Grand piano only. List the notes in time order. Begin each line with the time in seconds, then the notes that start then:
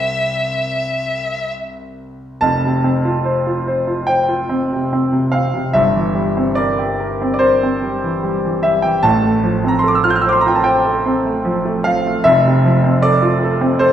Already playing: C2 C4 G4 C5
2.41 F1 F2 A5
2.64 C3
2.84 C4
3.05 F4
3.25 C5
3.47 F4
3.67 C5
3.87 F4
4.07 C5 G5
4.29 F4
4.49 C4
4.73 C3
4.93 C4
5.12 C3
5.32 C4 F5
5.54 C3
5.73 G1 G2 E5
5.95 E3
6.15 G3
6.37 C4
6.55 A#4 D5
6.79 G4
7.00 A#4
7.22 C4
7.34 D5
7.39 A#4 C5
7.63 C4
7.83 G3
8.04 E3
8.23 G3
8.45 E3
8.63 G3 E5
8.82 E3 G5
9.03 A1 A2 A5
9.23 A3
9.43 F3
9.64 C4 A#5
9.79 C6
9.84 A4
9.88 D6
9.95 E6
10.04 F4 F6
10.10 G6
10.16 F6
10.21 C5 E6
10.29 C6 D6
10.41 A#5
10.46 F4 G5
10.55 A5
10.64 C5 G5
10.85 A4
11.05 C4
11.25 A3
11.45 F3
11.65 A3
11.84 F3 F5
12.06 A3
12.24 F1 F2 E5
12.45 C3
12.65 F3
12.84 C4
13.02 A4 D5
13.22 F4
13.43 A4
13.61 C4
13.79 A4 C5